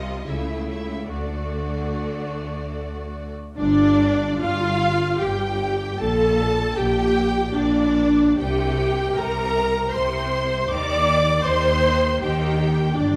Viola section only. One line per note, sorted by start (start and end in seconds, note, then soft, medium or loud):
0.00 0.28 G3 medium
0.30 1.09 A3 medium
1.10 3.32 A3 medium
3.58 4.36 D4 loud
4.40 5.20 F4 loud
5.20 5.98 G4 medium
5.99 6.75 A4 loud
6.76 7.53 G4 loud
7.55 8.38 D4 medium
8.38 9.15 G4 loud
9.17 9.94 A#4 loud
9.93 10.69 C5 medium
10.70 11.44 D5 loud
11.45 12.21 C5 loud
12.22 12.95 G4 medium
12.96 13.16 D4 medium